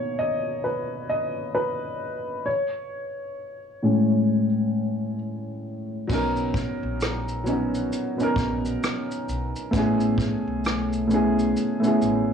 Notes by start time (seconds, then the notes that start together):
Already playing: B2 A#3 D#4 C#5
0.19 D#5
0.64 B4
1.09 D#5
1.55 B4
2.46 C#5
3.83 A2 G#3 C#4
6.07 B1 F#3 B3 C#4, kick, crash
6.12 D#4 A#4
6.36 shaker
6.54 kick, shaker
6.83 A#1
7.01 cross-stick, closed hi-hat, shaker
7.28 shaker
7.44 F#3 B3 C#4, shaker
7.49 D#4 F#4
7.75 shaker
7.92 closed hi-hat, shaker
8.17 F#3 B3 C#4, shaker
8.22 D#4 A#4
8.36 A#1, kick, shaker
8.65 shaker
8.83 cross-stick, closed hi-hat, shaker
9.11 shaker
9.29 B1, shaker
9.56 shaker
9.71 A1 A3 B3 C#4, kick, closed hi-hat, shaker
9.76 E4 G#4
10.00 shaker
10.18 kick, shaker
10.47 B1
10.65 cross-stick, closed hi-hat, shaker
10.93 shaker
11.07 A3 B3 C#4, shaker
11.13 E4 G#4
11.39 shaker
11.57 closed hi-hat, shaker
11.80 A3 B3 C#4
11.84 E4 G#4, shaker
12.02 A1, shaker